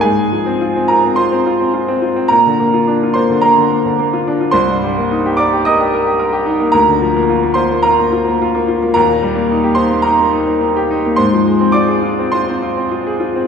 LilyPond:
\new Staff \with { instrumentName = "Grand piano" } { \time 4/4 \key f \dorian \tempo 4 = 107 << { <aes' aes''>4. <bes' bes''>8 <c'' c'''>4. r8 | <bes' bes''>4. <c'' c'''>8 <bes' bes''>2 | <c'' c'''>4. <d'' d'''>8 <ees'' ees'''>4. r8 | <bes' bes''>4. <c'' c'''>8 <bes' bes''>2 |
<bes' bes''>4. <c'' c'''>8 <bes' bes''>2 | <c'' c'''>4 <d'' d'''>4 <c'' c'''>2 | } \\ { aes,16 aes16 f16 c'16 f'16 c'16 f'16 c'16 f'16 c'16 f'16 c'16 f'16 c'16 f'16 c'16 | bes,16 d16 bes16 f'16 d'16 f'16 bes16 d16 bes16 d16 bes16 d16 bes16 f'16 d'16 f'16 | c,16 g,16 g16 bes16 ees'16 g'16 bes'16 g'16 bes'16 g'16 bes'16 g'16 bes'16 g'16 ees'16 bes16 | d,16 d16 f16 bes16 f'16 bes16 f'16 bes16 f'16 bes16 f'16 bes16 f'16 bes16 f'16 bes16 |
ees,16 bes,16 g16 bes16 ees'16 g'16 ees'16 bes16 ees'16 bes16 ees'16 bes16 ees'16 g'16 ees'16 bes16 | aes,16 f16 aes16 c'16 f'16 aes'16 f'16 c'16 f'16 c'16 f'16 c'16 f'16 aes'16 f'16 c'16 | } >> }